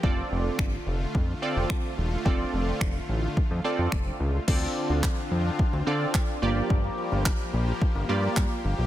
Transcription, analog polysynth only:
X:1
M:4/4
L:1/8
Q:1/4=108
K:Fmix
V:1 name="Analog polysynth"
[CFAd]2 z3 [CFAd]2 z | [CFAd]2 z3 [CFAd]2 z | [CFAd]2 z3 [CFAd]2 [B,FGd]- | [B,FGd]2 z3 [B,FGd]2 z |]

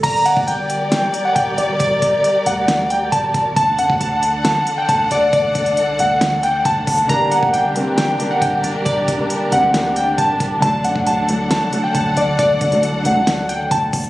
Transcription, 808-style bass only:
X:1
M:4/4
L:1/16
Q:1/4=136
K:Gm
V:1 name="808-style bass" clef=bass
G,,,3 D,, G,,,4- G,,, z3 G,,,2 G,,,2 | G,,,2 G,,,2 z2 D,,6 G,,,2 G,,,2 | D,,2 ^F,, D,, D,,4- D,, z3 D,,2 D,,2 | D,,2 D,,2 C,,2 D,,6 D,,2 D,,2 |
G,,,3 D,, G,,,4- G,,, z3 G,,,2 G,,,2 | G,,,2 G,,,2 z2 D,,6 G,,,2 G,,,2 | D,,2 ^F,, D,, D,,4- D,, z3 D,,2 D,,2 | D,,2 D,,2 C,,2 D,,6 D,,2 D,,2 |]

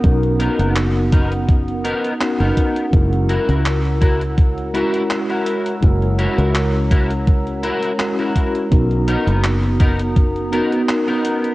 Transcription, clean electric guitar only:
X:1
M:4/4
L:1/16
Q:"Swing 16ths" 1/4=83
K:B
V:1 name="Clean electric guitar"
z2 [B,DA]2 z2 [B,DA] z3 [B,DA]2 z [B,DA]3 | z2 [EFA]2 z2 [EFA] z3 [EFA]2 z [EFA]3 | z2 [EFA]2 z2 [EFA] z3 [EFA]2 z [EFA]3 | z2 [B,DA]2 z2 [B,DA] z3 [B,DA]2 z [B,DA]3 |]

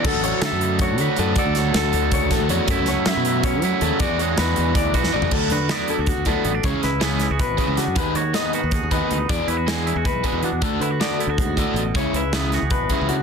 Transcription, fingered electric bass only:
X:1
M:7/8
L:1/16
Q:1/4=159
K:Dlyd
V:1 name="Fingered electric bass" clef=bass
D,, A,,,2 z D, F,,4- F,, D, z F,,2 | z D,,3 D,,2 D,,2 C,,2 A,,, D,, =F,, z | F,, C,,2 z F, B,,4- B,, F, z _E,, z | E,, E,,3 E,,2 E,,2 D,,2 B,,, E,, A,,, z |
D,,2 D,2 z3 D,,2 D,,2 z A,,,2 | C,, z C,,4- C,, C,,2 G,,, z C,, C, F,, | ^D,,2 ^D,2 z3 D,,2 D,,2 z =D,,2 | E,, z E,,4- E,, E,,2 B,,, z E,, E, E,, |
D,,2 D,2 z3 D,,2 D,,2 z A,,,2 | C,, z C,,4- C,, C,,2 G,,, z C,, C, z |]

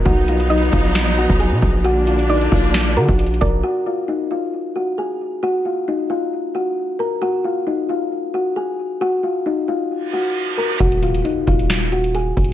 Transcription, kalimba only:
X:1
M:4/4
L:1/8
Q:1/4=134
K:Ebm
V:1 name="Kalimba"
[^F^f] [=F=f] [^D^d] [Ff]2 [^F^f] [Aa]2 | [Gg] [Ff] [Ee] [Ff]2 [Gg]2 [Bb] | [Gg] [Ff] [Ee] [Ff]2 [Gg] [Aa]2 | [Gg] [Ff] [Ee] [Ff]2 [Gg]2 [Bb] |
[Gg] [Ff] [Ee] [Ff]2 [Gg] [Aa]2 | [Gg] [Ff] [Ee] [Ff]2 [Gg]2 [Bb] | [Gg] [Ff] [Ee] [Ff]2 [Gg] [Aa]2 |]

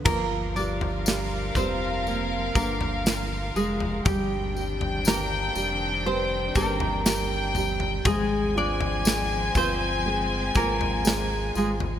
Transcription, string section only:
X:1
M:4/4
L:1/8
Q:1/4=60
K:Gphr
V:1 name="String section"
[F,FB]8 | [E,CD]8 | [F,A,C]8 |]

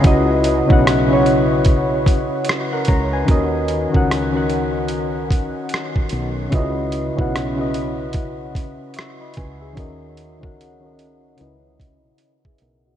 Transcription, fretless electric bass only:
X:1
M:4/4
L:1/16
Q:"Swing 16ths" 1/4=74
K:C#dor
V:1 name="Fretless electric bass" clef=bass
C,,3 B,,,8 z3 C,,2 | D,,3 C,,8 z3 B,,,2 | C,,3 B,,,8 z3 C,,2 | D,,3 C,,4- C,, C,,4 z2 B,,,2 |]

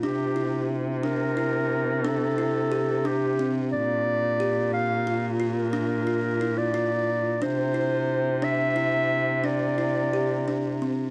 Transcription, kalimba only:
X:1
M:11/8
L:1/8
Q:1/4=89
K:Cmix
V:1 name="Kalimba"
D E2 D E2 D E G D C | z2 G2 F F D F E F2 | D E2 D E2 D E G D C |]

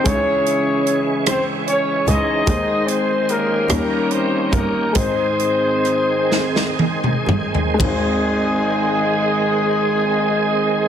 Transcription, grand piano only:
X:1
M:6/8
L:1/8
Q:3/8=46
K:Ab
V:1 name="Grand piano"
[A,DE_FA]6 | [A,Ec]3 [G,DEB]3 | [A,CEc]6 | [A,CEc]6 |]
V:2 name="Grand piano" clef=bass
D,3 z3 | E,3 E,3 | A,,3 z3 | A,,,6 |]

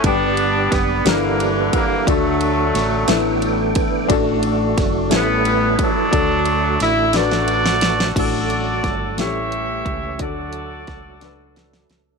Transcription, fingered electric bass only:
X:1
M:6/8
L:1/8
Q:3/8=59
K:D
V:1 name="Fingered electric bass" clef=bass
G,,,2 F,,, G,,,2 z | D,,2 A,,, A,,,2 z | A,,,2 F,,, A,,,2 z | D,,2 A,,,4 |
A,,,2 G,,, A,,,2 C,, | D,,2 C,,3 C,, |]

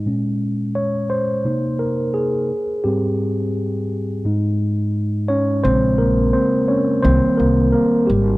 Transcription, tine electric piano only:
X:1
M:4/4
L:1/8
Q:"Swing 16ths" 1/4=86
K:Bbdor
V:1 name="Tine electric piano"
z2 d c2 B A2 | G4 z3 [Dd] | c [B,B] [Cc] [Dd] [Cc] [B,B] [B,B] [G,G] |]
V:2 name="Tine electric piano" clef=bass
[B,,A,D]3 z [C,B,E]3 z | [A,,G,C]3 z [A,,A,E]4 | [D,A,C]3 z [E,G,B,] z3 |]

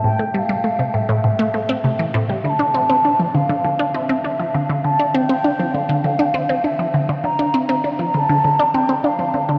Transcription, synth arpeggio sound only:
X:1
M:4/4
L:1/16
Q:1/4=100
K:Am
V:1 name="Synth arpeggio sound" clef=bass
A,, A, G, G, A, C, A,, A,, A,, A, A, C C, E, A,, G, | [K:Dm] D, D C C D F, D, D, D, D C C D F, D, D, | D, D C C D F, D, D, D, D C C D F, D, D, | D, D C C D F, D, D, D, D C C D F, D, D, |]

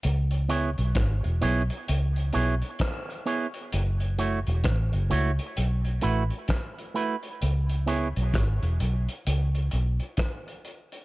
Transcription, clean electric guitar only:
X:1
M:4/4
L:1/8
Q:"Swing 16ths" 1/4=65
K:C#m
V:1 name="Clean electric guitar"
z [B,EGc] z [B,EGc] z [B,EGc] z [B,EGc] | z [A,EFc] z [A,EFc] z [A,EFB] z [A,EFB] | z [B,EGc] z6 |]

